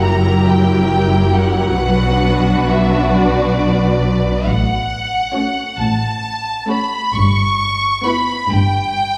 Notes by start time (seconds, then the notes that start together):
Already playing: F#1 F#2 F#3 E4 G4 A#4
0.02 A#5
0.47 G5
1.37 F#5
1.79 B1 B2 D4 F#4 B4
2.68 E5
3.13 D5
4.46 A1 A2 F#5
5.34 A3 C#4 F#4 C#5
5.79 A1 A2 A5
6.69 A3 C#4 F#4 C#5 B5
7.14 G1 G2 C#6
8.05 B3 E4 B4 B5
8.50 G1 G2 G5